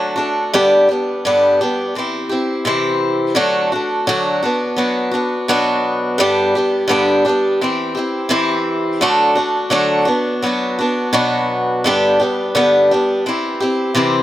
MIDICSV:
0, 0, Header, 1, 2, 480
1, 0, Start_track
1, 0, Tempo, 708383
1, 348, Time_signature, 4, 2, 24, 8
1, 9641, End_track
2, 0, Start_track
2, 0, Title_t, "Steel-string acoustic guitar"
2, 0, Program_c, 0, 25
2, 0, Note_on_c, 0, 54, 72
2, 0, Note_on_c, 0, 57, 73
2, 0, Note_on_c, 0, 62, 78
2, 0, Note_on_c, 0, 66, 85
2, 98, Note_off_c, 0, 66, 0
2, 106, Note_on_c, 0, 66, 62
2, 107, Note_off_c, 0, 54, 0
2, 108, Note_off_c, 0, 57, 0
2, 111, Note_off_c, 0, 62, 0
2, 118, Note_on_c, 0, 62, 56
2, 126, Note_on_c, 0, 57, 47
2, 347, Note_off_c, 0, 66, 0
2, 353, Note_off_c, 0, 62, 0
2, 357, Note_off_c, 0, 57, 0
2, 362, Note_on_c, 0, 43, 90
2, 363, Note_on_c, 0, 50, 91
2, 365, Note_on_c, 0, 55, 98
2, 367, Note_on_c, 0, 59, 93
2, 373, Note_on_c, 0, 62, 79
2, 373, Note_on_c, 0, 67, 101
2, 593, Note_off_c, 0, 67, 0
2, 595, Note_off_c, 0, 43, 0
2, 595, Note_off_c, 0, 50, 0
2, 596, Note_off_c, 0, 55, 0
2, 597, Note_off_c, 0, 59, 0
2, 600, Note_off_c, 0, 62, 0
2, 601, Note_on_c, 0, 67, 50
2, 615, Note_on_c, 0, 62, 53
2, 620, Note_on_c, 0, 59, 53
2, 630, Note_on_c, 0, 55, 44
2, 834, Note_off_c, 0, 67, 0
2, 841, Note_off_c, 0, 62, 0
2, 843, Note_off_c, 0, 55, 0
2, 844, Note_off_c, 0, 59, 0
2, 847, Note_on_c, 0, 43, 89
2, 849, Note_on_c, 0, 50, 78
2, 851, Note_on_c, 0, 55, 80
2, 857, Note_on_c, 0, 62, 93
2, 858, Note_on_c, 0, 67, 94
2, 859, Note_on_c, 0, 59, 94
2, 1077, Note_off_c, 0, 43, 0
2, 1078, Note_off_c, 0, 50, 0
2, 1079, Note_off_c, 0, 55, 0
2, 1082, Note_off_c, 0, 62, 0
2, 1082, Note_off_c, 0, 67, 0
2, 1083, Note_off_c, 0, 59, 0
2, 1090, Note_on_c, 0, 67, 59
2, 1096, Note_on_c, 0, 62, 58
2, 1106, Note_on_c, 0, 59, 47
2, 1108, Note_on_c, 0, 55, 50
2, 1318, Note_off_c, 0, 67, 0
2, 1321, Note_off_c, 0, 55, 0
2, 1321, Note_off_c, 0, 62, 0
2, 1324, Note_on_c, 0, 52, 50
2, 1326, Note_off_c, 0, 59, 0
2, 1329, Note_on_c, 0, 60, 62
2, 1344, Note_on_c, 0, 64, 66
2, 1348, Note_on_c, 0, 67, 72
2, 1546, Note_off_c, 0, 67, 0
2, 1554, Note_on_c, 0, 67, 52
2, 1555, Note_off_c, 0, 52, 0
2, 1558, Note_off_c, 0, 60, 0
2, 1560, Note_off_c, 0, 64, 0
2, 1569, Note_on_c, 0, 64, 50
2, 1575, Note_on_c, 0, 60, 46
2, 1791, Note_off_c, 0, 67, 0
2, 1795, Note_on_c, 0, 48, 84
2, 1798, Note_off_c, 0, 64, 0
2, 1801, Note_off_c, 0, 60, 0
2, 1801, Note_on_c, 0, 52, 79
2, 1809, Note_on_c, 0, 60, 86
2, 1809, Note_on_c, 0, 64, 92
2, 1813, Note_on_c, 0, 67, 91
2, 2266, Note_off_c, 0, 48, 0
2, 2269, Note_on_c, 0, 50, 84
2, 2273, Note_off_c, 0, 52, 0
2, 2276, Note_off_c, 0, 60, 0
2, 2276, Note_on_c, 0, 54, 93
2, 2278, Note_off_c, 0, 64, 0
2, 2279, Note_off_c, 0, 67, 0
2, 2279, Note_on_c, 0, 57, 98
2, 2281, Note_on_c, 0, 62, 98
2, 2281, Note_on_c, 0, 66, 92
2, 2508, Note_off_c, 0, 50, 0
2, 2512, Note_off_c, 0, 54, 0
2, 2512, Note_off_c, 0, 66, 0
2, 2513, Note_off_c, 0, 57, 0
2, 2514, Note_off_c, 0, 62, 0
2, 2520, Note_on_c, 0, 66, 52
2, 2527, Note_on_c, 0, 62, 44
2, 2545, Note_on_c, 0, 57, 45
2, 2754, Note_off_c, 0, 66, 0
2, 2757, Note_off_c, 0, 62, 0
2, 2758, Note_on_c, 0, 50, 78
2, 2758, Note_on_c, 0, 54, 96
2, 2764, Note_off_c, 0, 57, 0
2, 2770, Note_on_c, 0, 62, 88
2, 2770, Note_on_c, 0, 66, 95
2, 2772, Note_on_c, 0, 57, 93
2, 2990, Note_off_c, 0, 66, 0
2, 2993, Note_off_c, 0, 50, 0
2, 2993, Note_off_c, 0, 54, 0
2, 2999, Note_off_c, 0, 62, 0
2, 2999, Note_on_c, 0, 66, 53
2, 3000, Note_off_c, 0, 57, 0
2, 3006, Note_on_c, 0, 62, 59
2, 3019, Note_on_c, 0, 59, 48
2, 3229, Note_off_c, 0, 59, 0
2, 3229, Note_on_c, 0, 54, 58
2, 3232, Note_off_c, 0, 62, 0
2, 3233, Note_off_c, 0, 66, 0
2, 3237, Note_on_c, 0, 59, 59
2, 3240, Note_on_c, 0, 62, 70
2, 3246, Note_on_c, 0, 66, 71
2, 3457, Note_off_c, 0, 66, 0
2, 3466, Note_on_c, 0, 66, 56
2, 3468, Note_off_c, 0, 54, 0
2, 3472, Note_off_c, 0, 59, 0
2, 3474, Note_off_c, 0, 62, 0
2, 3481, Note_on_c, 0, 62, 48
2, 3488, Note_on_c, 0, 59, 50
2, 3707, Note_off_c, 0, 66, 0
2, 3712, Note_off_c, 0, 59, 0
2, 3715, Note_off_c, 0, 62, 0
2, 3715, Note_on_c, 0, 47, 77
2, 3721, Note_on_c, 0, 54, 86
2, 3721, Note_on_c, 0, 59, 91
2, 3724, Note_on_c, 0, 62, 100
2, 3731, Note_on_c, 0, 66, 97
2, 4188, Note_on_c, 0, 43, 98
2, 4191, Note_off_c, 0, 47, 0
2, 4193, Note_on_c, 0, 50, 82
2, 4195, Note_off_c, 0, 54, 0
2, 4195, Note_off_c, 0, 59, 0
2, 4197, Note_off_c, 0, 62, 0
2, 4200, Note_off_c, 0, 66, 0
2, 4200, Note_on_c, 0, 55, 110
2, 4203, Note_on_c, 0, 59, 93
2, 4208, Note_on_c, 0, 62, 92
2, 4210, Note_on_c, 0, 67, 94
2, 4429, Note_off_c, 0, 43, 0
2, 4431, Note_off_c, 0, 50, 0
2, 4431, Note_off_c, 0, 67, 0
2, 4435, Note_off_c, 0, 55, 0
2, 4436, Note_off_c, 0, 59, 0
2, 4438, Note_off_c, 0, 62, 0
2, 4439, Note_on_c, 0, 67, 58
2, 4449, Note_on_c, 0, 62, 55
2, 4450, Note_on_c, 0, 59, 46
2, 4462, Note_on_c, 0, 55, 44
2, 4659, Note_on_c, 0, 43, 103
2, 4661, Note_off_c, 0, 55, 0
2, 4664, Note_off_c, 0, 59, 0
2, 4669, Note_off_c, 0, 62, 0
2, 4669, Note_on_c, 0, 55, 92
2, 4671, Note_on_c, 0, 50, 89
2, 4672, Note_on_c, 0, 59, 87
2, 4674, Note_off_c, 0, 67, 0
2, 4677, Note_on_c, 0, 62, 94
2, 4684, Note_on_c, 0, 67, 104
2, 4903, Note_off_c, 0, 67, 0
2, 4904, Note_off_c, 0, 43, 0
2, 4909, Note_off_c, 0, 55, 0
2, 4910, Note_off_c, 0, 50, 0
2, 4910, Note_off_c, 0, 62, 0
2, 4911, Note_off_c, 0, 59, 0
2, 4911, Note_on_c, 0, 67, 60
2, 4918, Note_on_c, 0, 62, 61
2, 4934, Note_on_c, 0, 59, 52
2, 4941, Note_on_c, 0, 55, 53
2, 5150, Note_off_c, 0, 67, 0
2, 5154, Note_off_c, 0, 62, 0
2, 5156, Note_off_c, 0, 55, 0
2, 5159, Note_on_c, 0, 52, 64
2, 5160, Note_off_c, 0, 59, 0
2, 5163, Note_on_c, 0, 60, 65
2, 5171, Note_on_c, 0, 64, 65
2, 5177, Note_on_c, 0, 67, 71
2, 5376, Note_off_c, 0, 67, 0
2, 5385, Note_on_c, 0, 67, 53
2, 5393, Note_off_c, 0, 64, 0
2, 5395, Note_off_c, 0, 52, 0
2, 5396, Note_off_c, 0, 60, 0
2, 5401, Note_on_c, 0, 64, 47
2, 5410, Note_on_c, 0, 60, 51
2, 5617, Note_on_c, 0, 48, 86
2, 5619, Note_off_c, 0, 60, 0
2, 5622, Note_off_c, 0, 64, 0
2, 5625, Note_on_c, 0, 52, 95
2, 5627, Note_off_c, 0, 67, 0
2, 5627, Note_on_c, 0, 60, 90
2, 5630, Note_on_c, 0, 64, 103
2, 5635, Note_on_c, 0, 67, 89
2, 6102, Note_off_c, 0, 48, 0
2, 6105, Note_on_c, 0, 50, 89
2, 6108, Note_off_c, 0, 52, 0
2, 6109, Note_off_c, 0, 60, 0
2, 6110, Note_off_c, 0, 64, 0
2, 6112, Note_on_c, 0, 54, 87
2, 6113, Note_off_c, 0, 67, 0
2, 6113, Note_on_c, 0, 57, 103
2, 6117, Note_on_c, 0, 66, 90
2, 6119, Note_on_c, 0, 62, 106
2, 6330, Note_off_c, 0, 66, 0
2, 6338, Note_on_c, 0, 66, 54
2, 6339, Note_off_c, 0, 62, 0
2, 6347, Note_on_c, 0, 62, 54
2, 6348, Note_off_c, 0, 50, 0
2, 6352, Note_off_c, 0, 54, 0
2, 6352, Note_off_c, 0, 57, 0
2, 6359, Note_on_c, 0, 57, 44
2, 6573, Note_on_c, 0, 50, 87
2, 6574, Note_off_c, 0, 57, 0
2, 6578, Note_off_c, 0, 66, 0
2, 6579, Note_on_c, 0, 54, 82
2, 6581, Note_off_c, 0, 62, 0
2, 6582, Note_on_c, 0, 57, 82
2, 6586, Note_on_c, 0, 66, 88
2, 6589, Note_on_c, 0, 62, 109
2, 6803, Note_off_c, 0, 66, 0
2, 6811, Note_on_c, 0, 66, 62
2, 6818, Note_off_c, 0, 62, 0
2, 6822, Note_off_c, 0, 50, 0
2, 6825, Note_off_c, 0, 54, 0
2, 6826, Note_off_c, 0, 57, 0
2, 6826, Note_on_c, 0, 62, 55
2, 6833, Note_on_c, 0, 59, 52
2, 7061, Note_off_c, 0, 66, 0
2, 7062, Note_off_c, 0, 59, 0
2, 7064, Note_on_c, 0, 54, 65
2, 7069, Note_off_c, 0, 62, 0
2, 7070, Note_on_c, 0, 59, 71
2, 7078, Note_on_c, 0, 62, 69
2, 7091, Note_on_c, 0, 66, 64
2, 7301, Note_off_c, 0, 66, 0
2, 7308, Note_off_c, 0, 54, 0
2, 7309, Note_on_c, 0, 66, 58
2, 7311, Note_off_c, 0, 59, 0
2, 7313, Note_off_c, 0, 62, 0
2, 7321, Note_on_c, 0, 62, 54
2, 7329, Note_on_c, 0, 59, 47
2, 7537, Note_off_c, 0, 59, 0
2, 7539, Note_on_c, 0, 47, 89
2, 7542, Note_off_c, 0, 62, 0
2, 7542, Note_off_c, 0, 66, 0
2, 7542, Note_on_c, 0, 54, 89
2, 7546, Note_on_c, 0, 59, 92
2, 7550, Note_on_c, 0, 62, 89
2, 7550, Note_on_c, 0, 66, 101
2, 8025, Note_off_c, 0, 47, 0
2, 8025, Note_on_c, 0, 43, 90
2, 8027, Note_off_c, 0, 54, 0
2, 8029, Note_off_c, 0, 59, 0
2, 8031, Note_off_c, 0, 62, 0
2, 8031, Note_off_c, 0, 66, 0
2, 8033, Note_on_c, 0, 50, 98
2, 8040, Note_on_c, 0, 59, 85
2, 8041, Note_on_c, 0, 55, 96
2, 8044, Note_on_c, 0, 62, 102
2, 8044, Note_on_c, 0, 67, 98
2, 8255, Note_off_c, 0, 67, 0
2, 8263, Note_off_c, 0, 62, 0
2, 8264, Note_on_c, 0, 67, 60
2, 8268, Note_off_c, 0, 43, 0
2, 8268, Note_off_c, 0, 59, 0
2, 8271, Note_on_c, 0, 62, 43
2, 8272, Note_off_c, 0, 50, 0
2, 8276, Note_off_c, 0, 55, 0
2, 8276, Note_on_c, 0, 59, 50
2, 8288, Note_on_c, 0, 55, 47
2, 8498, Note_off_c, 0, 55, 0
2, 8502, Note_on_c, 0, 43, 85
2, 8503, Note_on_c, 0, 50, 89
2, 8505, Note_off_c, 0, 62, 0
2, 8506, Note_on_c, 0, 55, 95
2, 8507, Note_off_c, 0, 59, 0
2, 8507, Note_off_c, 0, 67, 0
2, 8513, Note_on_c, 0, 62, 86
2, 8514, Note_on_c, 0, 67, 83
2, 8515, Note_on_c, 0, 59, 101
2, 8742, Note_off_c, 0, 67, 0
2, 8747, Note_off_c, 0, 43, 0
2, 8747, Note_off_c, 0, 50, 0
2, 8748, Note_off_c, 0, 55, 0
2, 8749, Note_off_c, 0, 62, 0
2, 8750, Note_on_c, 0, 67, 64
2, 8753, Note_off_c, 0, 59, 0
2, 8757, Note_on_c, 0, 62, 55
2, 8767, Note_on_c, 0, 55, 52
2, 8769, Note_on_c, 0, 59, 47
2, 8982, Note_off_c, 0, 55, 0
2, 8985, Note_on_c, 0, 52, 65
2, 8986, Note_off_c, 0, 59, 0
2, 8989, Note_on_c, 0, 60, 72
2, 8990, Note_off_c, 0, 67, 0
2, 8994, Note_off_c, 0, 62, 0
2, 9002, Note_on_c, 0, 64, 77
2, 9007, Note_on_c, 0, 67, 64
2, 9210, Note_off_c, 0, 67, 0
2, 9218, Note_on_c, 0, 67, 67
2, 9222, Note_off_c, 0, 64, 0
2, 9228, Note_off_c, 0, 52, 0
2, 9230, Note_off_c, 0, 60, 0
2, 9230, Note_on_c, 0, 64, 55
2, 9237, Note_on_c, 0, 60, 46
2, 9450, Note_on_c, 0, 48, 91
2, 9452, Note_off_c, 0, 60, 0
2, 9455, Note_on_c, 0, 52, 91
2, 9457, Note_off_c, 0, 64, 0
2, 9460, Note_on_c, 0, 60, 84
2, 9461, Note_off_c, 0, 67, 0
2, 9465, Note_on_c, 0, 64, 97
2, 9469, Note_on_c, 0, 67, 80
2, 9641, Note_off_c, 0, 48, 0
2, 9641, Note_off_c, 0, 52, 0
2, 9641, Note_off_c, 0, 60, 0
2, 9641, Note_off_c, 0, 64, 0
2, 9641, Note_off_c, 0, 67, 0
2, 9641, End_track
0, 0, End_of_file